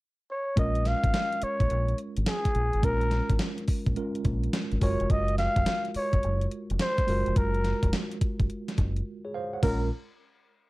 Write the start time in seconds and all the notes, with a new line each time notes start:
0.31 C#5
0.56 A#1 G#3 C#4 F4 A#4 D#5, kick, closed hi-hat
0.75 closed hi-hat
0.85 F5, snare, closed hi-hat
1.04 G#1, kick, closed hi-hat
1.14 snare, closed hi-hat
1.33 closed hi-hat
1.42 C#5, muted fingered electric bass stroke, closed hi-hat
1.60 A#1, kick, closed hi-hat
1.70 A#1, closed hi-hat
1.88 closed hi-hat
1.98 closed hi-hat
2.17 G#1, closed hi-hat
2.26 G#4, snare, closed hi-hat
2.45 kick, closed hi-hat
2.55 A#1, closed hi-hat
2.73 G#1, closed hi-hat
2.82 A#1 G#3 C#4 F4 A#4, kick, closed hi-hat
3.01 closed hi-hat
3.11 snare, closed hi-hat
3.30 G#1, kick, closed hi-hat
3.39 snare, closed hi-hat
3.58 closed hi-hat
3.68 muted fingered electric bass stroke, kick, open hi-hat
3.86 A#1, kick, closed hi-hat
3.96 G#3 C#4 F4 A#4, closed hi-hat
4.15 closed hi-hat
4.25 A#1, kick, closed hi-hat
4.44 closed hi-hat
4.53 snare, closed hi-hat
4.72 G#1, closed hi-hat
4.81 F#1 G#3 F4 F#4 A#4 C#5, kick, open hi-hat
5.00 F1, closed hi-hat
5.10 F#1 D#5, kick, closed hi-hat
5.28 closed hi-hat
5.38 F5, snare, closed hi-hat
5.56 F1, kick, closed hi-hat
5.66 snare, closed hi-hat
5.85 closed hi-hat
5.95 C#5, muted fingered electric bass stroke, open hi-hat
6.13 F#1, kick, closed hi-hat
6.23 F#1, closed hi-hat
6.41 closed hi-hat
6.51 closed hi-hat
6.70 F1, closed hi-hat
6.79 C5, snare, closed hi-hat
6.98 kick, closed hi-hat
7.07 F#1 G#3 F4 F#4 A#4, open hi-hat
7.26 F1, closed hi-hat
7.36 F#1 A#4, kick, closed hi-hat
7.54 closed hi-hat
7.64 snare, closed hi-hat
7.83 F1, kick, closed hi-hat
7.93 snare, closed hi-hat
8.12 closed hi-hat
8.21 muted fingered electric bass stroke, kick, closed hi-hat
8.40 F#1, kick, closed hi-hat
8.50 closed hi-hat
8.68 snare, closed hi-hat
8.78 F#1, kick, closed hi-hat
8.96 closed hi-hat
9.25 G#4 C#5
9.34 C5 F5
9.53 C#5 F#5
9.63 A#1 G#3 C#4 F4 A#4, kick, crash